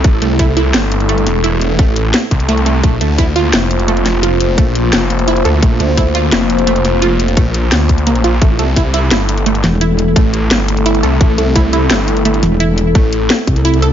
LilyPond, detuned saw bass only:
\new Staff \with { instrumentName = "Detuned saw bass" } { \clef bass \time 4/4 \key a \phrygian \tempo 4 = 172 a,,8 c,4. g,,4. e,,8~ | e,,4 a,,4 r8 c,4. | bes,,8 d,4. f,,4. f,,8~ | f,,4 r4 f,,4. d,8 |
bes,,8 d,4. f,,4. f,,8~ | f,,4 bes,,4 d,4. bes,,8 | a,,8 c,4. g,,4. r8 | r4 a,,4 g,,4. c,8 |
a,,8 c,4. g,,4. r8 | r4 a,,4 r2 | }